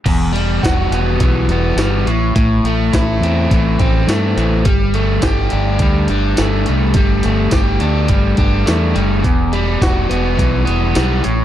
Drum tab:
CC |x-------|--------|--------|--------|
HH |xxxxxxxx|xxxxxxxx|xxxxxxxx|xxxxxxxx|
TB |--x---x-|--x---x-|--x---x-|--x---x-|
SD |--o---o-|--o---o-|--o---o-|--o---o-|
BD |o-o-o---|o-o-oo--|o-o-o---|o-o-oo--|

CC |--------|
HH |xxxxxxxx|
TB |--x---x-|
SD |--o---o-|
BD |o-o-o---|